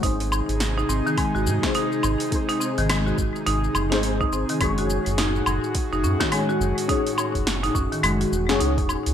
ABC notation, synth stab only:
X:1
M:4/4
L:1/16
Q:"Swing 16ths" 1/4=105
K:none
V:1 name="Synth stab"
[^G,^B,^D^G^B]8- [G,B,DGB]3 [G,B,DGB]4- [G,B,DGB] | [^G,^B,^D^G^B]8- [G,B,DGB]3 [G,B,DGB]4- [G,B,DGB] | [^C^F^G^c]8- [CFGc]3 [CFGc]4- [CFGc] | [^C^F^G^c]8- [CFGc]3 [CFGc]4- [CFGc] |]